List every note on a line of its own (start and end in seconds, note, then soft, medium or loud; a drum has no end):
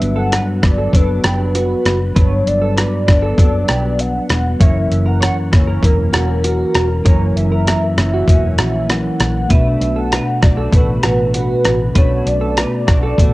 0.00 0.38 G1 medium
0.00 0.63 G2 medium
0.00 0.66 F#3 medium
0.00 2.11 G3 medium
0.00 0.63 B3 medium
0.00 0.61 D4 medium
0.00 2.12 D4 medium
0.00 2.12 F#4 medium
0.00 2.13 B4 medium
0.00 0.17 E5 loud
0.00 closed hi-hat soft
0.16 0.32 A4 medium
0.16 0.65 F#5 loud
0.32 0.47 B4 medium
0.32 cross-stick medium
0.32 closed hi-hat medium
0.62 0.87 G1 medium
0.62 0.93 F#3 soft
0.62 0.94 B3 soft
0.62 0.93 D4 soft
0.62 0.96 D5 medium
0.62 kick medium
0.62 cross-stick medium
0.62 closed hi-hat soft
0.78 1.07 A4 medium
0.93 1.18 F#1 medium
0.93 1.25 F#3 medium
0.93 1.24 B3 medium
0.93 1.22 D4 medium
0.93 1.54 B4 loud
0.93 kick medium
0.93 closed hi-hat medium
1.24 1.73 F#1 medium
1.24 2.16 B3 soft
1.24 2.16 D4 soft
1.24 1.39 G4 medium
1.24 cross-stick loud
1.24 closed hi-hat soft
1.28 2.16 F#3 soft
1.55 1.98 F#4 medium
1.55 2.18 B4 medium
1.55 closed hi-hat medium
1.85 2.10 F#1 medium
1.85 cross-stick medium
1.85 closed hi-hat soft
2.14 2.41 G1 medium
2.14 3.07 G2 medium
2.14 3.10 F#3 medium
2.14 4.56 G3 medium
2.14 3.08 B3 medium
2.14 4.57 D4 medium
2.14 3.06 D4 medium
2.14 4.58 F#4 medium
2.14 2.30 B4 medium
2.14 2.49 C#5 loud
2.14 kick loud
2.14 closed hi-hat medium
2.19 4.59 B4 medium
2.47 2.84 G1 medium
2.47 4.02 D5 medium
2.47 closed hi-hat soft
2.62 2.76 A4 medium
2.77 2.92 B4 medium
2.77 cross-stick medium
2.77 closed hi-hat medium
3.07 3.33 G1 medium
3.07 3.38 B3 soft
3.07 3.38 D4 soft
3.07 kick medium
3.07 cross-stick medium
3.07 closed hi-hat soft
3.11 3.37 F#3 soft
3.22 3.52 A4 medium
3.38 3.63 F#1 loud
3.38 3.69 F#3 medium
3.38 3.69 B3 medium
3.38 3.66 D4 loud
3.38 kick medium
3.38 closed hi-hat medium
3.68 4.18 B1 medium
3.68 4.61 B3 soft
3.68 4.60 D4 medium
3.68 3.83 G4 medium
3.68 cross-stick medium
3.68 closed hi-hat soft
3.72 4.60 F#3 soft
3.99 4.62 F#5 loud
3.99 closed hi-hat medium
4.29 4.54 E1 medium
4.29 cross-stick medium
4.29 closed hi-hat soft
4.58 4.85 F#1 medium
4.58 5.52 F#2 medium
4.58 5.53 E3 medium
4.58 7.01 F#3 medium
4.58 5.52 A#3 medium
4.58 7.01 C#4 medium
4.58 7.02 E4 medium
4.58 4.75 C#5 medium
4.58 5.09 E5 loud
4.58 kick loud
4.58 closed hi-hat medium
4.62 5.50 C#4 medium
4.62 7.03 A#4 medium
4.91 5.28 F#1 medium
4.91 closed hi-hat soft
5.06 5.20 A#4 medium
5.06 5.55 F#5 loud
5.20 5.36 C#5 medium
5.20 cross-stick medium
5.20 closed hi-hat medium
5.52 5.77 F#1 medium
5.52 5.82 E3 soft
5.52 5.83 A#3 soft
5.52 5.83 C#4 soft
5.52 5.86 C#5 medium
5.52 kick medium
5.52 cross-stick medium
5.52 closed hi-hat soft
5.67 5.97 A#4 medium
5.82 6.08 E1 loud
5.82 6.14 F#2 medium
5.82 6.14 E3 medium
5.82 6.13 A#3 medium
5.82 6.11 C#4 medium
5.82 6.45 A#4 loud
5.82 kick medium
5.82 closed hi-hat medium
6.12 6.63 E1 medium
6.12 7.05 E3 soft
6.12 7.06 A#3 soft
6.12 7.05 C#4 soft
6.12 6.28 F#4 medium
6.12 cross-stick loud
6.12 closed hi-hat soft
6.44 6.88 F#4 medium
6.44 7.07 A#4 medium
6.44 closed hi-hat medium
6.75 7.00 E1 medium
6.75 cross-stick medium
6.75 closed hi-hat medium
7.03 7.30 F#1 medium
7.03 7.98 F#2 medium
7.03 7.98 E3 medium
7.03 8.85 F#3 medium
7.03 7.97 A#3 medium
7.03 8.86 C#4 medium
7.03 8.86 E4 medium
7.03 7.20 A#4 loud
7.03 7.36 C#5 loud
7.03 kick medium
7.03 closed hi-hat medium
7.08 7.95 C#4 medium
7.08 8.87 A#4 medium
7.36 7.73 F#1 medium
7.36 8.91 E5 loud
7.36 closed hi-hat soft
7.52 7.66 A#4 medium
7.67 7.82 A#4 medium
7.67 cross-stick medium
7.67 closed hi-hat medium
7.97 8.22 F#1 medium
7.97 8.28 A#3 soft
7.97 8.28 C#4 soft
7.97 cross-stick medium
7.97 closed hi-hat soft
8.01 8.28 E3 soft
8.14 8.43 F#4 medium
8.27 8.59 E1 medium
8.27 8.59 F#2 medium
8.27 8.59 E3 medium
8.27 8.59 A#3 medium
8.27 8.57 C#4 loud
8.27 kick medium
8.27 closed hi-hat medium
8.58 9.08 A#1 medium
8.58 9.52 E3 soft
8.58 9.50 A#3 soft
8.58 9.50 C#4 soft
8.58 8.74 F#4 medium
8.58 cross-stick medium
8.58 closed hi-hat soft
8.88 9.50 F#3 soft
8.88 9.51 C#4 soft
8.88 9.51 E4 soft
8.88 9.52 A#4 medium
8.88 9.53 F#5 loud
8.88 cross-stick medium
8.88 closed hi-hat medium
9.20 9.45 A#1 medium
9.20 cross-stick medium
9.20 closed hi-hat soft
9.47 9.75 B1 medium
9.47 10.42 B2 medium
9.47 11.90 A3 medium
9.47 10.45 A3 medium
9.47 11.91 D4 medium
9.47 11.92 F#4 medium
9.47 9.65 B4 medium
9.47 9.99 E5 loud
9.47 kick loud
9.47 closed hi-hat medium
9.52 10.43 D4 medium
9.52 10.41 F#4 medium
9.52 11.93 B4 medium
9.81 10.18 B1 medium
9.81 closed hi-hat soft
9.96 10.12 A4 medium
9.96 10.45 F#5 medium
10.12 10.27 B4 medium
10.12 cross-stick medium
10.12 closed hi-hat medium
10.41 10.67 B1 medium
10.41 10.73 A3 soft
10.41 10.74 D4 soft
10.41 10.73 F#4 soft
10.41 10.74 D5 medium
10.41 kick medium
10.41 cross-stick medium
10.41 closed hi-hat soft
10.57 10.87 A4 medium
10.71 10.98 A1 medium
10.71 11.94 B2 medium
10.71 11.96 A3 medium
10.71 11.31 B4 medium
10.71 kick medium
10.71 closed hi-hat medium
10.76 11.96 D4 medium
10.76 11.97 F#4 medium
11.03 11.53 A1 medium
11.03 11.18 F#4 medium
11.03 cross-stick medium
11.03 closed hi-hat soft
11.34 11.78 F#4 medium
11.34 11.99 B4 medium
11.34 closed hi-hat medium
11.65 11.90 A1 loud
11.65 cross-stick medium
11.65 closed hi-hat medium
11.93 12.20 B1 medium
11.93 12.88 B2 medium
11.93 13.34 A3 medium
11.93 12.91 A3 medium
11.93 12.02 C#4 soft
11.93 12.89 D4 medium
11.93 13.34 F#4 medium
11.93 12.10 B4 medium
11.93 kick loud
11.93 closed hi-hat medium
11.97 13.34 D4 soft
11.97 12.87 F#4 medium
11.97 13.34 B4 medium
11.97 12.29 C#5 loud
12.26 12.63 B1 medium
12.26 13.34 D5 loud
12.26 closed hi-hat soft
12.41 12.57 A4 medium
12.57 12.72 B4 medium
12.57 cross-stick medium
12.57 closed hi-hat medium
12.87 13.13 B1 medium
12.87 13.18 A3 soft
12.87 13.19 D4 soft
12.87 13.18 F#4 soft
12.87 kick medium
12.87 cross-stick medium
12.87 closed hi-hat soft
13.03 13.32 A4 medium
13.18 13.34 A1 loud
13.18 13.34 B2 medium
13.18 13.34 A3 medium
13.18 13.34 D4 medium
13.18 13.34 F#4 loud
13.18 kick medium
13.18 closed hi-hat medium